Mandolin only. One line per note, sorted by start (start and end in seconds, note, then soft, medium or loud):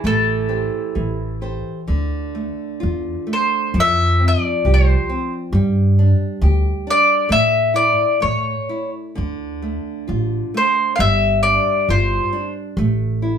0.07 1.40 A4 medium
3.33 3.78 C5 medium
3.80 4.24 E5 loud
4.28 4.70 D5 medium
4.74 5.32 C5 medium
6.90 7.32 D5 loud
7.32 7.75 E5 loud
7.76 8.22 D5 medium
8.22 8.90 C#5 medium
10.57 10.95 C5 medium
10.96 11.00 F5 medium
11.00 11.42 E5 loud
11.43 11.90 D5 medium
11.90 12.52 C5 medium